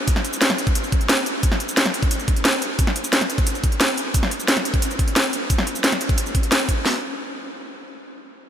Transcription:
0.08 kick, closed hi-hat, shaker
0.16 snare
0.25 closed hi-hat, shaker
0.33 shaker
0.41 snare, closed hi-hat, shaker
0.50 snare, closed hi-hat
0.58 closed hi-hat, shaker
0.67 kick, closed hi-hat
0.75 closed hi-hat, shaker
0.84 shaker
0.92 kick, closed hi-hat
1.01 closed hi-hat
1.09 snare, closed hi-hat, shaker
1.26 closed hi-hat, shaker
1.43 kick, closed hi-hat, shaker
1.52 snare
1.60 closed hi-hat, shaker
1.69 shaker
1.77 snare, closed hi-hat, shaker
1.86 snare, closed hi-hat
1.94 closed hi-hat, shaker
2.02 kick, closed hi-hat
2.11 closed hi-hat, shaker
2.19 shaker
2.28 kick, closed hi-hat
2.36 closed hi-hat
2.45 snare, closed hi-hat, shaker
2.62 closed hi-hat, shaker
2.79 kick, closed hi-hat, shaker
2.87 snare
2.96 closed hi-hat, shaker
3.04 shaker
3.13 snare, closed hi-hat, shaker
3.21 snare, closed hi-hat
3.30 closed hi-hat, shaker
3.38 kick, closed hi-hat
3.47 closed hi-hat, shaker
3.55 shaker
3.64 kick, closed hi-hat
3.72 closed hi-hat
3.81 snare, closed hi-hat, shaker
3.97 closed hi-hat, shaker
4.14 kick, closed hi-hat, shaker
4.23 snare
4.31 closed hi-hat, shaker
4.40 shaker
4.48 snare, closed hi-hat, shaker
4.57 snare, closed hi-hat
4.65 closed hi-hat, shaker
4.74 kick, closed hi-hat
4.82 closed hi-hat, shaker
4.91 shaker
4.99 kick, closed hi-hat
5.08 closed hi-hat
5.16 snare, closed hi-hat, shaker
5.33 closed hi-hat, shaker
5.50 kick, closed hi-hat, shaker
5.58 snare
5.67 closed hi-hat, shaker
5.75 shaker
5.84 snare, closed hi-hat, shaker
5.92 snare, closed hi-hat
6.01 closed hi-hat, shaker
6.09 kick, closed hi-hat
6.18 closed hi-hat, shaker
6.26 shaker
6.35 kick, closed hi-hat
6.43 closed hi-hat
6.52 snare, closed hi-hat, shaker
6.69 kick, closed hi-hat, shaker
6.86 snare

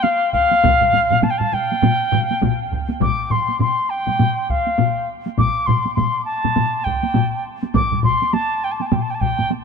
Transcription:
0.03 F5, taiko high
0.33 F5, taiko
0.52 taiko high
0.63 taiko, taiko low-mid, taiko mid, taiko high
0.81 taiko low-mid, taiko mid
0.93 taiko low-mid, taiko mid, taiko high
1.10 taiko low-mid, taiko mid, taiko high
1.23 A5, taiko low-mid, taiko mid, taiko high
1.30 G5
1.38 A5, taiko low-mid, taiko mid
1.52 G5, taiko low-mid, taiko mid
1.72 taiko high
1.82 taiko low-mid, taiko mid, taiko high
2.12 taiko low-mid, taiko mid
2.31 taiko high
2.42 taiko, taiko low-mid, taiko mid, taiko high
2.72 taiko
2.89 taiko high
3.00 D6, taiko, taiko low-mid, taiko mid, taiko high
3.30 C6, taiko low-mid, taiko mid
3.48 taiko high
3.59 C6, taiko low-mid, taiko mid, taiko high
3.90 G5
4.07 taiko low-mid, taiko mid, taiko high
4.19 taiko low-mid, taiko mid, taiko high
4.49 F5, taiko
4.67 taiko high
4.78 taiko low-mid, taiko mid, taiko high
5.26 taiko high
5.38 D6, taiko, taiko low-mid, taiko mid, taiko high
5.66 C6, taiko low-mid, taiko mid
5.85 taiko high
5.95 C6, taiko low-mid, taiko mid, taiko high
6.25 A5
6.45 taiko low-mid, taiko mid, taiko high
6.56 taiko low-mid, taiko mid, taiko high
6.84 G5, taiko
7.03 taiko high
7.15 taiko low-mid, taiko mid, taiko high
7.63 taiko high
7.74 D6, taiko, taiko low-mid, taiko mid, taiko high
7.92 taiko low-mid, taiko mid
8.03 C6, taiko low-mid, taiko mid
8.22 taiko high
8.33 A5, taiko high
8.64 G5
8.72 A5
8.80 G5, taiko high
8.87 A5
8.92 G5, taiko low-mid, taiko mid, taiko high
9.02 A5
9.10 G5
9.14 A5
9.21 G5, taiko, taiko low-mid, taiko mid
9.39 taiko low-mid, taiko mid, taiko high
9.51 taiko high

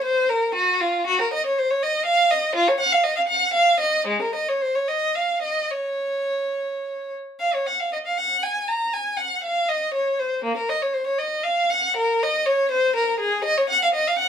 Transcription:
0.04 C5
0.29 A#4
0.55 F#4
0.81 F4
1.07 F#4
1.21 A#4
1.33 D#5
1.46 C#5
1.58 C5
1.70 C#5
1.83 D#5
2.06 F5
2.30 D#5
2.55 F4
2.68 C#5
2.80 F#5
2.92 F5
3.03 D#5
3.16 F5
3.28 F#5
3.53 F5
3.80 D#5
4.07 G#3
4.22 A#4
4.35 D#5
4.49 C#5
4.62 C5
4.75 C#5
4.88 D#5
5.15 F5
5.42 D#5
5.71 C#5
7.40 F5
7.54 C#5
7.66 F#5
7.80 F5
7.93 D#5
8.06 F5
8.18 F#5
8.43 G#5
8.68 A#5
8.93 G#5
9.17 F#5
9.44 F5
9.69 D#5
9.94 C#5
10.19 C5
10.44 A#3
10.57 A#4
10.69 D#5
10.82 C#5
10.93 C5
11.07 C#5
11.18 D#5
11.43 F5
11.70 F#5
11.97 A#4
12.23 D#5
12.46 C#5
12.71 C5
12.96 A#4
13.20 G#4
13.44 D#5
13.58 C#5
13.69 F#5
13.83 F5
13.94 D#5
14.07 F5
14.18 F#5

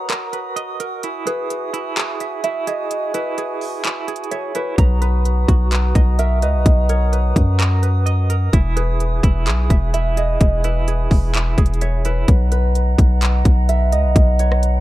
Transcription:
Already playing: F#4 B4 C#5 D#5 F#5 A#5 D#6
0.10 A#4, clap, closed hi-hat
0.33 B4, closed hi-hat
0.56 D#5, closed hi-hat
0.80 A#4, closed hi-hat
1.03 E4 E5 G#5, closed hi-hat
1.27 G#4 B4, closed hi-hat
1.50 closed hi-hat
1.74 E4, closed hi-hat
1.97 G#4, clap, closed hi-hat
2.20 E5, closed hi-hat
2.44 E4 E5, closed hi-hat
2.67 G#4 D#5, closed hi-hat
2.91 closed hi-hat
3.14 E4 B4, closed hi-hat
3.38 G#4, closed hi-hat
3.61 open hi-hat
3.84 E4, clap, closed hi-hat
4.08 G#4, closed hi-hat
4.16 closed hi-hat
4.24 closed hi-hat
4.31 C#5 E5, closed hi-hat
4.55 E4 B4, closed hi-hat
4.78 B1 F#5 A#5 D#6, kick, closed hi-hat
5.02 B4, closed hi-hat
5.25 closed hi-hat
5.48 B1 F#4, kick, closed hi-hat
5.72 B4, clap, closed hi-hat
5.95 B1 D#5, kick, closed hi-hat
6.19 A#4 E5, closed hi-hat
6.42 C#2 B4 D#5, closed hi-hat
6.54 B1
6.66 B1, kick, closed hi-hat
6.89 A#4 C#5, closed hi-hat
7.13 B4, closed hi-hat
7.36 F#2, kick, closed hi-hat
7.59 A#4, clap, closed hi-hat
7.83 B4, closed hi-hat
8.06 D#5, closed hi-hat
8.30 A#4, closed hi-hat
8.53 E1 E4 B4 E5 G#5, kick, closed hi-hat
8.76 G#4 B4, closed hi-hat
9.00 closed hi-hat
9.23 E1 E4, kick, closed hi-hat
9.47 B1 G#4, clap, closed hi-hat
9.70 E1 E5, kick, closed hi-hat
9.94 E4 E5, closed hi-hat
10.17 G#4 D#5, closed hi-hat
10.41 E1, kick, closed hi-hat
10.64 E4 B4, closed hi-hat
10.88 G#4, closed hi-hat
11.11 E1, kick, open hi-hat
11.34 E4, clap, closed hi-hat
11.58 E1 G#4, kick, closed hi-hat
11.66 closed hi-hat
11.74 closed hi-hat
11.81 C#5 E5, closed hi-hat
12.05 E4 B4, closed hi-hat
12.28 B1 B4 D#5 F#5 A#5, kick, closed hi-hat
12.52 B4, closed hi-hat
12.75 closed hi-hat
12.98 B1, kick, closed hi-hat
13.22 clap, closed hi-hat
13.45 B1, kick, closed hi-hat
13.69 E5, closed hi-hat
13.92 C#2 D#5, closed hi-hat
14.04 B1
14.16 B1, kick, closed hi-hat
14.39 C#5, closed hi-hat
14.52 cross-stick
14.63 closed hi-hat

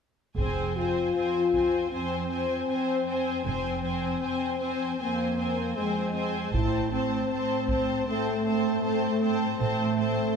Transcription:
0.37 F1 F2 C4 G#4 C5 G#5, taiko
0.77 C4 F4 C5 G#5
1.15 F2 C4 C5 G#5
1.53 C4 C5 G#5, taiko
1.92 F2 C4 C5 G#5
2.30 C4 C5 G#5
2.69 F2 C4 C5 G#5
3.07 C4 C5 G#5
3.45 F1 F2 C4 C5 G#5
3.84 C4 C5 G#5
4.21 F2 C4 C5 G#5
4.59 C4 C5 G#5
4.99 F2 A#3 C4 C5 G#5
5.38 C4 C5 G#5
5.76 F2 G#3 C4 C5 G#5
6.14 C4 C5 G#5
6.53 A1 A2 C4 E4 C5 A5, taiko
6.92 C4 C5 A5
7.30 A2 C4 C5 A5
7.68 C4 C5 A5, taiko
8.06 A2 A3 C4 C5 A5
8.46 C4 C5 A5
8.83 A2 C4 C5 A5
9.21 C4 C5 A5
9.59 A1 A2 A3 C4 C5 A5
9.97 C4 C5 A5

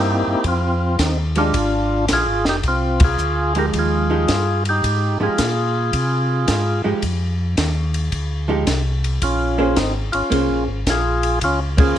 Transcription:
Already playing: G2 A#3 C4 D#4 E4 G4
0.27 G2
0.44 F2 C4 F4, kick, ride
0.99 D#2 C4 D#4, kick, snare, hi-hat pedal, ride
1.35 F3 G#3 D4 D#4 F4 G4, ride
1.54 G#1, kick, ride
2.08 A#1, kick, snare, hi-hat pedal, ride
2.13 F4 G#4
2.27 G#1
2.45 F1 D#4, snare
2.49 G4
2.63 C2, kick, ride
2.68 C4 F4
3.00 kick, ride
3.04 F4 G#4
3.18 D2, hi-hat pedal
3.55 F3 G#3 D#4 G4 A#4, ride
3.73 D#2, kick, ride
3.79 F4 G#4
4.10 F3 G#3 D#4 G4
4.28 G2, kick, snare, hi-hat pedal, ride
4.65 G4, ride
4.70 D#4
4.84 G#2, kick, ride
5.20 G#2 F3 G#3 D#4 F4 G4 G#4
5.38 A#2, kick, snare, hi-hat pedal, ride
5.93 C3, kick, ride
6.48 G#2, kick, snare, hi-hat pedal, ride
6.84 G#2 F3 G#3 D#4 G4
7.02 F2, kick, ride
7.57 D#2, kick, snare, hi-hat pedal, ride
7.94 ride
8.12 D2, kick, ride
8.48 F3 G#3 D#4 G4
8.67 C2, kick, snare, hi-hat pedal, ride
9.04 ride
9.22 A#1 C#4 F4, kick, ride
9.58 A#3 C#4 G#4 C5
9.76 G#1 C4 D#4, kick, snare, hi-hat pedal, ride
10.12 G#1 C#4 F4, ride
10.30 C2 A#3 C#4 G#4 C5, kick, ride
10.50 A#1
10.68 G#1
10.87 A#1 F4 G#4, kick, snare, hi-hat pedal, ride
11.23 ride
11.41 C#2 C#4 F4, kick, ride
11.77 A#3 C#4 F4 G#4 C5, kick, ride

